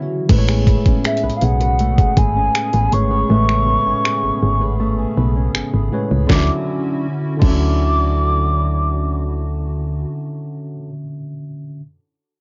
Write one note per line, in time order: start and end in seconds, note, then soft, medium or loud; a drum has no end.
0.00 0.25 E3 medium
0.00 0.25 F#3 medium
0.00 0.29 F#3 medium
0.00 0.25 B3 medium
0.00 0.37 C#4 soft
0.00 0.48 E4 medium
0.00 0.25 F#4 medium
0.29 0.77 A1 loud
0.29 1.54 A2 medium
0.29 6.26 C#3 medium
0.29 1.55 G#3 medium
0.29 1.79 A3 medium
0.29 6.26 B3 medium
0.29 6.26 C#4 medium
0.29 6.26 G#4 medium
0.29 1.55 B4 medium
0.29 0.37 C5 medium
0.29 kick loud
0.29 closed hi-hat medium
0.29 crash medium
0.38 1.59 C#5 loud
0.48 1.03 G#4 medium
0.48 finger snap medium
0.48 closed hi-hat soft
0.67 1.22 B4 medium
0.67 kick medium
0.67 closed hi-hat medium
0.86 0.93 B1 medium
0.86 2.36 C#4 medium
0.86 kick medium
0.86 closed hi-hat soft
1.04 1.41 G#4 medium
1.04 1.34 E5 medium
1.04 finger snap loud
1.04 closed hi-hat medium
1.17 closed hi-hat medium
1.23 1.31 B1 soft
1.23 1.60 B4 medium
1.30 closed hi-hat soft
1.37 1.45 F5 medium
1.41 2.06 B1 medium
1.41 1.97 G#4 medium
1.41 2.20 F#5 loud
1.41 closed hi-hat medium
1.61 2.16 B4 medium
1.61 closed hi-hat medium
1.79 3.29 A3 medium
1.79 closed hi-hat medium
1.98 2.54 G#4 medium
1.98 kick loud
1.98 closed hi-hat medium
2.17 2.49 G#1 medium
2.17 2.72 B4 medium
2.17 2.94 G#5 loud
2.17 kick medium
2.17 closed hi-hat medium
2.36 3.85 C#4 medium
2.55 2.91 G#4 medium
2.55 finger snap loud
2.55 closed hi-hat medium
2.73 2.89 A1 medium
2.73 3.10 B4 medium
2.73 closed hi-hat soft
2.92 3.24 G#1 medium
2.92 3.23 G#3 medium
2.92 3.23 A3 medium
2.92 3.47 G#4 medium
2.92 3.24 B4 medium
2.92 3.24 C#5 medium
2.92 5.55 C#6 loud
2.92 closed hi-hat medium
3.11 3.66 B4 medium
3.29 3.78 A1 loud
3.29 4.54 A2 medium
3.29 4.55 G#3 medium
3.29 4.79 A3 medium
3.29 4.55 B4 medium
3.29 4.56 E5 medium
3.48 4.03 G#4 medium
3.48 finger snap medium
3.67 4.22 B4 medium
3.86 3.94 G#1 medium
3.86 5.35 C#4 medium
4.04 4.41 G#4 medium
4.04 finger snap loud
4.23 4.31 G#1 soft
4.23 4.60 B4 medium
4.42 5.06 G#1 medium
4.42 4.97 G#4 medium
4.61 5.16 B4 medium
4.80 6.30 A3 medium
4.98 5.53 G#4 medium
5.17 5.49 B1 medium
5.17 5.72 B4 medium
5.36 6.33 C#4 medium
5.55 5.62 G#1 soft
5.55 5.91 G#4 medium
5.55 finger snap loud
5.73 5.89 G#1 medium
5.73 6.10 B4 medium
5.91 6.23 A2 medium
5.91 6.23 G#3 medium
5.91 6.36 G#4 medium
5.91 6.24 B4 medium
5.91 6.24 C#5 medium
6.11 6.27 C#2 medium
6.11 6.37 B4 medium
6.25 6.48 D3 medium
6.25 7.05 D3 medium
6.25 6.50 C#4 medium
6.29 6.50 D2 loud
6.29 10.05 D3 medium
6.29 7.05 F#3 medium
6.29 10.05 C#4 medium
6.29 10.05 E4 medium
6.29 10.05 F#4 medium
6.29 6.52 F#4 medium
6.29 6.51 D6 medium
6.29 kick loud
6.29 snare medium
6.34 7.06 C#4 medium
6.34 7.05 E4 medium
6.34 6.54 E5 medium
7.37 10.73 D3 medium
7.37 10.89 D3 medium
7.37 10.75 C#4 medium
7.42 10.05 D2 medium
7.42 10.93 F#3 medium
7.42 10.77 F#4 medium
7.42 10.06 D6 loud
7.42 kick loud
7.42 crash medium
7.46 10.96 C#4 medium
7.46 10.99 E4 medium
7.46 10.78 E5 medium